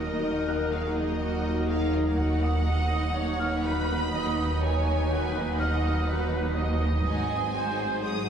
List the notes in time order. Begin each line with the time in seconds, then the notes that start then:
Already playing: D#1 D#2 F#3 D#4 F#4 A#4 D#5 F#5
0.00 A#3 D#4
0.23 D#4 F#4 A#4
0.47 A#3 D#4 F#6
0.71 D#4 F#4 G#4 F5
0.96 A#3 D#4 D#5
1.21 D#4 F#4
1.45 A#3 D#4
1.69 D#4 F#4 G#4 F5
1.94 A#3 D#4 D#5
2.08 F5
2.18 D#1 D#2 F#3 D#4 F#4 B4 F#5
2.43 B3 D#4 D#6
2.67 D#4 F#4 D#5
2.93 B3 D#4
3.16 D#4 F#4 C#5
3.39 B3 D#4 F6
3.65 D#4 F#4 B4 B5
3.90 B3 D#4
4.14 D#4 F#4 D#5
4.40 B3 D#4
4.62 D#4 F#4 C#5 G#5
4.88 B3 D#4
5.11 D#4 F#4 B4
5.37 B3 D#4
5.60 D#4 F#4 D#5 F#5 F6
5.85 B3 D#4
6.09 D#4 F#4 B4
6.34 B3 D#4
6.57 D#4 F#4 D#5
6.82 B3 D#4
7.06 G#1 G#2 F#3 D#4 F#4 G#4 C5 G#5
7.31 C4 G#4
7.55 D#4 F#4 C5
7.79 C4 G#4
8.04 D#4 F#4 G#4 D#6